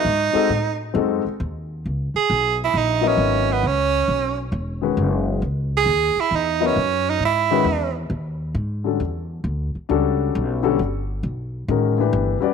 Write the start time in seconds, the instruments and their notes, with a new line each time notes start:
Already playing: tenor saxophone D#4
0.05 upright bass G#2
0.33 grand piano G#3 C4 D#4 F#4 A4, muted upright bass stroke
0.50 upright bass A2
0.94 upright bass F#2, grand piano G#3 C4 D#4 F#4 A4
1.25 muted upright bass stroke
1.40 upright bass D#2
1.86 upright bass C#2
2.14 tenor saxophone G#4, muted upright bass stroke
2.30 upright bass B1
2.64 tenor saxophone E4
2.74 upright bass A#1
2.78 tenor saxophone D#4
3.01 grand piano F#3 B3 E4 A#4 D#5
3.08 tenor saxophone C#4
3.18 upright bass G#1
3.52 tenor saxophone B3
3.63 upright bass C#2, tenor saxophone C#4
4.08 upright bass B1
4.52 upright bass E1
4.82 grand piano D#3 G#3 C#4 F#4 B4
4.97 upright bass F#1
5.42 upright bass C#2
5.77 tenor saxophone G#4
5.86 upright bass D#2
6.16 muted upright bass stroke
6.20 tenor saxophone E4
6.31 upright bass E2
6.36 tenor saxophone D#4
6.60 grand piano F#3 B3 E4 A#4 D#5
6.67 tenor saxophone C#4
6.76 upright bass F#2
7.10 tenor saxophone D#4
7.20 upright bass G#2
7.25 tenor saxophone E4
7.51 grand piano D#3 G#3 C#4 F#4 B4
7.64 upright bass E2
8.10 upright bass D#2
8.55 upright bass G#2
8.84 grand piano D3 G3 C#4 F#4 A4
9.00 upright bass E2
9.44 upright bass D2
9.75 muted upright bass stroke
9.89 upright bass C#2, grand piano G3 C#4 D4 F#4 A4
10.35 upright bass B1
10.63 grand piano D3 G3 C#4 F#4 A4
10.79 upright bass G1
11.23 upright bass B1
11.68 upright bass A1, grand piano D#3 G#3 C#4 F#4 A#4
11.98 grand piano E3 A3 D4 G4 B4
12.13 upright bass G1
12.40 grand piano G3 C#4 F#4 B4 D5, muted upright bass stroke